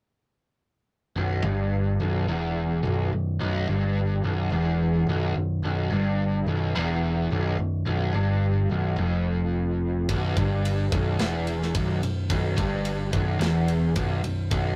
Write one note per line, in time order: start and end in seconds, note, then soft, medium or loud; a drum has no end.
1.16 1.43 B0 medium
1.16 1.44 B1 loud
1.44 1.96 G1 medium
1.44 2.00 G2 medium
2.00 2.26 B0 medium
2.00 2.28 B1 loud
2.28 2.80 E1 medium
2.28 2.83 E2 loud
2.83 3.11 B0 loud
2.83 3.11 B1 loud
3.12 3.38 B0 medium
3.12 3.35 B1 medium
3.40 3.66 B0 medium
3.40 3.67 B1 loud
3.68 4.20 G1 medium
3.68 4.23 G2 medium
4.24 4.50 B0 medium
4.24 4.51 B1 medium
4.52 5.04 E1 medium
4.52 5.07 E2 loud
5.07 5.33 B0 medium
5.07 5.35 B1 loud
5.35 5.61 B0 medium
5.35 5.58 B1 medium
5.62 5.89 B0 medium
5.62 5.91 B1 loud
5.91 6.43 G1 medium
5.91 6.46 G2 medium
6.46 6.72 B0 medium
6.46 6.75 B1 loud
6.75 7.27 E1 medium
6.75 7.30 E2 loud
7.30 7.56 B0 medium
7.30 7.58 B1 loud
7.59 7.84 B0 medium
7.59 7.81 B1 medium
7.86 8.12 B0 medium
7.86 8.13 B1 loud
8.14 8.66 G1 medium
8.14 8.69 G2 medium
8.69 8.95 B0 medium
8.69 8.97 B1 medium
8.98 10.05 F1 medium
8.98 10.08 F2 medium
10.09 10.35 B0 medium
10.09 10.36 B1 loud
10.09 kick medium
10.09 ride medium
10.36 10.88 G1 medium
10.36 10.92 G2 medium
10.36 kick medium
10.36 ride soft
10.65 ride medium
10.92 11.18 B0 medium
10.92 11.20 B1 loud
10.92 kick loud
10.92 ride medium
11.19 11.71 E1 medium
11.19 11.75 E2 loud
11.19 snare medium
11.19 ride medium
11.47 ride medium
11.62 snare soft
11.75 12.01 B0 loud
11.75 12.02 B1 medium
11.75 kick loud
11.75 ride medium
12.01 12.28 B0 medium
12.01 12.25 B1 medium
12.01 ride medium
12.30 12.56 B0 loud
12.30 12.57 B1 loud
12.30 kick medium
12.30 ride medium
12.58 13.10 G1 medium
12.58 13.12 G2 loud
12.58 kick medium
12.58 ride medium
12.85 ride medium
13.13 13.39 B0 medium
13.13 13.40 B1 loud
13.13 kick medium
13.13 ride medium
13.40 13.92 E1 loud
13.40 13.95 E2 loud
13.40 snare medium
13.40 ride medium
13.68 ride medium
13.96 14.22 B0 loud
13.96 14.22 B1 loud
13.96 kick loud
13.96 ride medium
14.23 14.50 B0 medium
14.23 14.46 B1 medium
14.23 ride medium
14.51 14.76 B0 medium
14.51 14.76 B1 loud
14.51 kick medium
14.51 ride medium